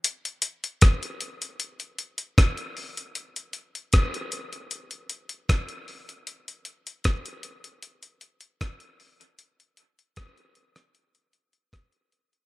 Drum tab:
HH |xxxxxxxxxxxxxxox|xxxxxxxxxxxxxxox|xxxxxxxxxxxxxxox|xxxxxxxxxxxxxxxx|
SD |----r-------r---|----r-------r---|----r-------r---|----r--r----r---|
BD |----o-------o---|----o-------o---|----o-------o---|----o-------o---|